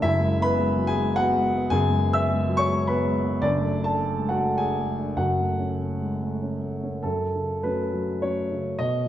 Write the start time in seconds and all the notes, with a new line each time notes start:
0.02 F#1 F#2 E4 E5
0.20 G#3
0.40 B3 B4 B5
0.59 G#3
0.77 F#3
0.87 G#4 G#5
0.97 G#3
1.16 B3 F#4 F#5
1.33 G#3
1.53 B3
1.70 F#1 F#2 G#4 G#5
1.90 G#3
2.10 B3 E6
2.14 E5
2.30 G#3
2.49 F#3
2.57 C#5 C#6
2.69 G#3
2.87 B3 B4 B5
3.06 G#3
3.24 B3
3.42 F#1 F#2 D4 D5
3.60 A3
3.80 D4 A5
3.85 A4
4.00 A3
4.18 G#3
4.29 F#4 F#5
4.38 A3
4.58 D4 G#4 G#5
4.79 A3
4.98 D4
5.16 F#1 F#2 F#4 F#5
5.40 A3
5.59 C#4
5.81 A3
6.02 G#3
6.22 A3
6.42 C#4
6.62 A3
6.83 C#4
7.03 F#2 A4
7.35 C#3
7.63 F#3 A3 C#4 B4
7.93 F#3
8.22 F#3 A3 C#4 C#5
8.51 C#3
8.79 B2 D#5